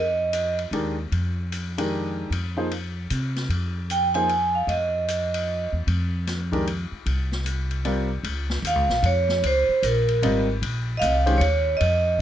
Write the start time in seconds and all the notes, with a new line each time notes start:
Already playing: F2 D#5
0.33 hi-hat pedal, ride
0.59 ride
0.71 D#2 D#3 G#3 D4 G4 A#4, ride
1.12 F2, ride
1.52 hi-hat pedal, ride
1.78 D#3 G#3 D4 G4 A#4, ride
2.30 F2, ride
2.57 F3 A#3 D#4 G#4 C5
2.71 ride
3.10 C3, hi-hat pedal, ride
3.36 snare, ride
3.49 F2, ride
3.90 G5, hi-hat pedal, ride
4.14 F3 A#3 D#4 G#4 C5 G#5, ride
4.29 ride
4.55 F5
4.67 F2 D#5, ride
5.08 hi-hat pedal, ride
5.34 ride
5.73 E2
5.87 F2, ride
6.27 snare, hi-hat pedal, ride
6.52 D#3 G#3 D4 G4 A#4, kick, ride
6.67 ride
6.92 muted upright bass stroke
7.06 C2, ride
7.32 snare
7.46 hi-hat pedal, ride
7.71 ride
7.85 G3 C4 F4 A#4 D5, ride
8.23 C#2, ride
8.50 snare
8.62 D#2, hi-hat pedal, ride
8.67 F5
8.75 C#2
8.89 A#1, snare
9.03 F2 C#5, ride
9.29 snare
9.44 C#2 C5, ride
9.69 muted upright bass stroke
9.83 A#1 A#4, hi-hat pedal, ride
10.08 ride
10.22 G#1 G3 C4 F4 A#4 D#5, ride
10.62 A#1, ride
10.97 C2 D#5 F5
11.01 hi-hat pedal, ride
11.26 D#3 G#3 C#4 G4 C5, ride
11.38 D#2 C#5, ride
11.77 F2 D#5, ride